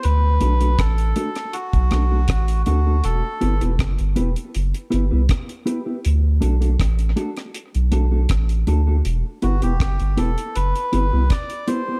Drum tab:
HH |x-xxxxxxxxx-xxx-|x-xxxxxxxxx-xxx-|x-xxxxxxxxx-xxx-|x-xxxxxxxxx-xxx-|
SD |----r--r--r-r---|----r-------r---|----r--r----r---|----r-------r---|
BD |----o----o--o---|----o-------o---|----o-------o---|----o-------o---|